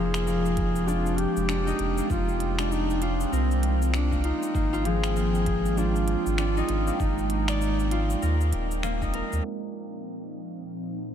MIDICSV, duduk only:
0, 0, Header, 1, 2, 480
1, 0, Start_track
1, 0, Tempo, 612245
1, 1647, Time_signature, 4, 2, 24, 8
1, 8739, End_track
2, 0, Start_track
2, 0, Title_t, "Duduk"
2, 0, Program_c, 0, 69
2, 0, Note_on_c, 0, 68, 113
2, 690, Note_on_c, 0, 65, 108
2, 701, Note_off_c, 0, 68, 0
2, 930, Note_on_c, 0, 67, 120
2, 942, Note_off_c, 0, 65, 0
2, 1649, Note_off_c, 0, 67, 0
2, 1656, Note_on_c, 0, 65, 116
2, 2133, Note_on_c, 0, 63, 102
2, 2145, Note_off_c, 0, 65, 0
2, 2372, Note_on_c, 0, 62, 100
2, 2384, Note_off_c, 0, 63, 0
2, 2613, Note_on_c, 0, 60, 101
2, 2624, Note_off_c, 0, 62, 0
2, 2883, Note_off_c, 0, 60, 0
2, 3089, Note_on_c, 0, 62, 98
2, 3329, Note_on_c, 0, 63, 111
2, 3341, Note_off_c, 0, 62, 0
2, 3813, Note_on_c, 0, 68, 117
2, 3825, Note_off_c, 0, 63, 0
2, 4530, Note_on_c, 0, 65, 117
2, 4542, Note_off_c, 0, 68, 0
2, 5486, Note_off_c, 0, 65, 0
2, 5491, Note_on_c, 0, 63, 102
2, 6898, Note_off_c, 0, 63, 0
2, 8739, End_track
0, 0, End_of_file